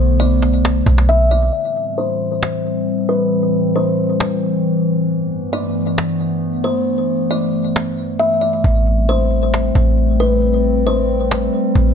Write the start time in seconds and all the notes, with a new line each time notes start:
Already playing: B1 D3 A3 B3
0.20 D5
0.42 cajon slap
0.65 cajon slap
0.86 B1, cajon bass
0.98 cajon slap
1.09 E5, cajon slap
1.31 D5
1.53 A2 E3 G3 C4
1.98 C5
2.43 cajon slap
3.09 B4
3.76 C5
4.20 cajon slap
5.09 G2 A3 B3
5.53 D5
5.98 cajon slap
6.64 C5
7.31 D5
7.76 cajon slap
8.20 E5
8.41 D5
8.64 A1 G3 A3 C4, cajon bass
8.86 cajon slap
9.08 C5, cajon slap
9.31 cajon slap
9.54 cajon slap
9.75 A1, cajon bass
9.98 cajon slap
10.20 B4, cajon slap
10.42 cajon slap
10.64 cajon slap
10.86 C5, cajon slap
11.09 cajon slap
11.31 cajon slap
11.53 cajon slap
11.75 A1, cajon bass